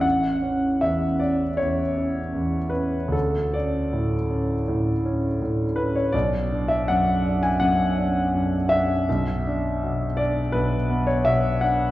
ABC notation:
X:1
M:4/4
L:1/16
Q:1/4=81
K:A
V:1 name="Grand piano"
f4 e2 d2 c6 B2 | A2 d8- d2 z2 B c | d3 e f3 g f6 e2- | e6 d2 B3 c e2 f2 |]
V:2 name="Grand piano" clef=bass
A,,,2 C2 E,,2 C2 E,,2 C2 E,,2 C2 | D,,2 C2 A,,2 C2 A,,2 C2 A,,2 C2 | B,,,2 D2 F,,2 D2 F,,2 D2 F,,2 D2 | B,,,2 D2 B,,2 D2 B,,,2 B,2 B,,2 D2 |]